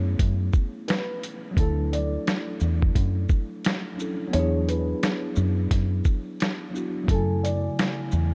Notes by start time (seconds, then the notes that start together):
Already playing: F#2 A3 B3 C#4 E4 G#4
0.19 F#2, kick, closed hi-hat
0.53 kick, shaker
0.88 B4, snare, closed hi-hat
1.23 closed hi-hat, shaker
1.51 F#3 A3
1.57 D2 D4 E4 A4, kick, closed hi-hat
1.63 A4
1.93 D5, closed hi-hat, shaker
2.27 snare, closed hi-hat
2.60 E2, shaker
2.82 kick
2.95 F#2, kick, closed hi-hat
3.29 kick, shaker
3.65 snare, closed hi-hat
3.96 F#3 C#4 D4, shaker
4.00 E4 A4
4.28 F#3 B3
4.33 E2 D4 E4 C#5, closed hi-hat
4.39 G#4
4.68 B4, closed hi-hat, shaker
5.03 snare, closed hi-hat
5.36 F#2, shaker
5.71 F#2, kick, snare, closed hi-hat
6.05 kick, shaker
6.40 snare, closed hi-hat
6.71 F#3 B3 D4
6.75 E4 F#4, shaker
7.03 F#3 A3
7.08 F#2 C#3 E4 A4, kick, closed hi-hat
7.15 G#5
7.43 D5, closed hi-hat, shaker
7.79 snare, closed hi-hat
8.11 E2, shaker